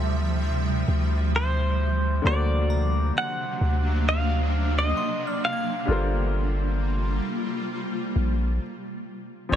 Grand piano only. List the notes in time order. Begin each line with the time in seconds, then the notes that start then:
Already playing: D3 D4 E4 F4 G4 C5
2.22 D3 A#3 D4
2.27 F#4 C5
5.85 G3 D4 F4
5.90 A4 A#4 C5
9.49 F3 C4 D4